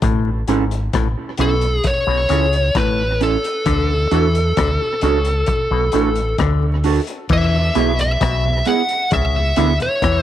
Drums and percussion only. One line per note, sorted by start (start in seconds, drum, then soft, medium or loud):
0.02 kick loud
0.02 closed hi-hat medium
0.48 closed hi-hat medium
0.71 closed hi-hat medium
0.93 kick loud
0.93 cross-stick loud
0.93 closed hi-hat medium
1.38 closed hi-hat medium
1.61 closed hi-hat medium
1.84 kick loud
1.84 closed hi-hat medium
2.29 closed hi-hat medium
2.53 closed hi-hat soft
2.75 kick loud
2.75 cross-stick loud
2.75 closed hi-hat medium
3.21 closed hi-hat medium
3.44 closed hi-hat medium
3.66 kick loud
3.66 closed hi-hat medium
4.11 closed hi-hat medium
4.35 closed hi-hat medium
4.57 kick loud
4.57 cross-stick loud
4.57 closed hi-hat medium
5.01 closed hi-hat medium
5.25 closed hi-hat medium
5.46 kick loud
5.46 closed hi-hat medium
5.92 closed hi-hat medium
6.15 closed hi-hat medium
6.38 kick loud
6.38 cross-stick loud
6.38 closed hi-hat medium
6.84 open hi-hat medium
7.07 closed hi-hat medium
7.29 kick loud
7.29 crash medium
7.75 closed hi-hat medium
7.99 closed hi-hat medium
8.21 kick loud
8.21 cross-stick loud
8.21 closed hi-hat medium
8.65 closed hi-hat medium
8.89 closed hi-hat medium
9.11 kick loud
9.11 closed hi-hat medium
9.56 closed hi-hat medium
9.80 closed hi-hat soft
10.02 kick loud
10.02 cross-stick loud
10.02 closed hi-hat medium